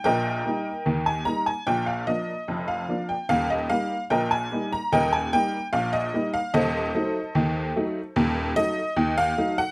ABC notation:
X:1
M:2/4
L:1/16
Q:1/4=74
K:Eb
V:1 name="Honky-tonk piano"
[Beg]4- [Beg] a b a | g f e3 f2 g | f e f2 [Beg] a2 b | [Beg] a g2 f e2 f |
[=Ace]8 | z2 e3 f2 _g |]
V:2 name="Honky-tonk piano" clef=bass
[B,,,B,,]2 [G,B,E]2 [E,,E,]2 [G,B,E]2 | [B,,,B,,]2 [F,B,D]2 [F,,,F,,]2 [F,B,D]2 | [E,,,E,,]2 [G,B,E]2 [B,,,B,,]2 [G,B,E]2 | [E,,,E,,]2 [G,B,E]2 [B,,,B,,]2 [G,B,E]2 |
[E,,,E,,]2 [_G,=A,E]2 [E,,E,]2 [G,A,E]2 | [E,,,E,,]2 [_G,=A,E]2 [E,,E,]2 [G,A,E]2 |]